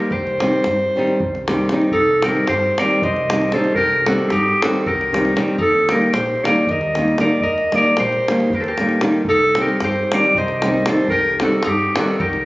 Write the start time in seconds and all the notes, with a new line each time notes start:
Already playing: G4 A#4 C5 D5
0.00 davul high
0.10 C2 G4 C5, davul low
0.27 davul high
0.40 D#3 G3 C4 D#4, davul high
0.53 davul high
0.64 G2, davul high
0.96 D#3 G3 C4 D#4
1.07 davul high
1.20 C2, davul low
1.35 davul high
1.48 D#3 G3 C4 D#4, davul high
1.69 D#3 G3 C4, davul high
1.74 D#4
1.82 davul high
1.91 C2 D#4 A4, davul low
2.22 G4 A#4, davul high
2.27 D#3 G3 C4 D#4
2.37 davul high
2.47 G2 G4 C5, davul high
2.78 D#3 G3 C4 A#4 D5, davul high
2.82 D#4
2.91 davul high
3.02 C2 C5 D#5, davul low
3.16 davul high
3.30 D#3 G3 C4 D#4, davul high
3.42 davul high
3.52 D#3 G3 C4 D#4 A4 C5, davul high
3.64 davul high
3.75 C2 G4 A#4, davul low
4.06 D#3 G3 C4 D#4 F#4 A4, davul high
4.19 davul high
4.29 G2 D#4 G4, davul high
4.62 D#3 G3 C4 D#4 F#4 A4, davul high
4.74 davul high
4.86 C2 G4 A#4, davul low
5.01 davul high
5.13 D#3 G3 C4 D#4, davul high
5.25 davul high
5.36 D#3 G3 C4 D#4, davul high
5.48 davul high
5.58 D#2 D#4 A4, davul low
5.89 D#3 G3 A#3 D#4 G4 A#4, davul high
6.02 davul high
6.13 A#1 G4 C5, davul high
6.44 D#3 G3 A#3 D#4 A#4 D5, davul high
6.56 davul high
6.67 D#2 A#4 D#5, davul low
6.81 davul high
6.95 D#3 G3 A#3 D#4, davul high
7.08 davul high
7.18 D#3 G3 A#3 D#4 A#4 D5, davul high
7.29 davul high
7.41 D#2 A#4 D#5, davul low
7.58 davul high
7.72 D#3 G3 A#3 D#4 D5, davul high
7.77 A#4
7.84 davul high
7.97 A#1 G4 C5, davul high
8.12 davul high
8.28 D#3 G3 A#3 D#4, davul high
8.40 davul high
8.50 D#2, davul low
8.54 G4 A#4
8.60 A4 C5, davul high
8.68 G4 A#4
8.78 D#3 G3 A#3 D#4, davul high
8.89 davul high
9.01 D#3 G3 A#3 D#4, davul high
9.12 davul high
9.25 C2, davul low
9.29 D#4 A4
9.55 D#3 G3 C4 D#4, davul high
9.61 G4 A#4
9.69 davul high
9.80 G2 G4, davul high
9.84 C5
10.12 D#3 G3 C4 D#4 A#4 D5, davul high
10.24 davul high
10.35 C2 C5 D#5, davul low
10.48 davul high
10.62 D#3 G3 C4 D#4, davul high
10.74 davul high
10.86 D#3 G3 C4 D#4 A4 C5, davul high
10.97 davul high
11.08 C2 G4 A#4, davul low
11.40 D#3 G3 C4 D#4 F#4 A4, davul high
11.52 davul high
11.63 G2 D#4, davul high
11.68 G4
11.96 D#3 G3 C4 D#4 F#4 A4, davul high
12.07 davul high
12.20 C2 G4 A#4, davul low
12.33 davul high